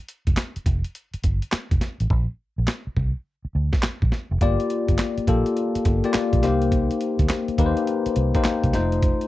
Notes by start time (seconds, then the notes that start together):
0.08 closed hi-hat
0.27 F1, kick, closed hi-hat
0.37 snare, clap, closed hi-hat
0.56 muted fingered electric bass stroke, closed hi-hat
0.66 F1, kick, closed hi-hat
0.84 closed hi-hat
0.95 closed hi-hat
1.14 muted fingered electric bass stroke, closed hi-hat
1.23 G1, kick, closed hi-hat
1.42 closed hi-hat
1.52 muted fingered electric bass stroke, snare, clap, closed hi-hat
1.71 F1, kick, closed hi-hat
1.81 snare, closed hi-hat
2.00 A1, closed hi-hat
2.10 A#1, kick
2.58 A#1
2.67 snare, clap
2.87 muted fingered electric bass stroke
2.97 C2, kick
3.45 muted fingered electric bass stroke
3.55 D2
3.73 kick, snare
3.83 muted fingered electric bass stroke, snare, clap
4.02 A#1, kick
4.12 snare
4.31 F1
4.41 G1 A#3 F4 G4 D5, kick, closed hi-hat
4.60 closed hi-hat
4.70 closed hi-hat
4.88 G1, kick, closed hi-hat
4.98 snare, clap, closed hi-hat
5.18 muted fingered electric bass stroke, closed hi-hat
5.27 A#1 A#3 F4 G4 A4, kick, closed hi-hat
5.46 closed hi-hat
5.57 closed hi-hat
5.75 muted fingered electric bass stroke, closed hi-hat
5.85 G1, kick, closed hi-hat
6.04 A#3 F4 G4 D5, closed hi-hat
6.14 muted fingered electric bass stroke, snare, clap, closed hi-hat
6.33 A#1, kick, closed hi-hat
6.43 C2 A#3 D#4 G4 C5, snare, closed hi-hat
6.62 closed hi-hat
6.72 kick, closed hi-hat
6.91 closed hi-hat
7.01 closed hi-hat
7.19 D2, kick, closed hi-hat
7.29 snare, clap, closed hi-hat
7.48 muted fingered electric bass stroke, closed hi-hat
7.58 D#2 A#3 D#4 G4 B4, kick, closed hi-hat
7.66 C5
7.77 closed hi-hat
7.87 closed hi-hat
8.06 muted fingered electric bass stroke, closed hi-hat
8.16 C2, closed hi-hat
8.35 A#3 D#4 G4 C5, kick, closed hi-hat
8.44 muted fingered electric bass stroke, snare, clap, closed hi-hat
8.64 C2, kick, closed hi-hat
8.73 F1 A3 D#4 F4 C5, snare, closed hi-hat
8.92 closed hi-hat
9.02 kick, closed hi-hat
9.21 closed hi-hat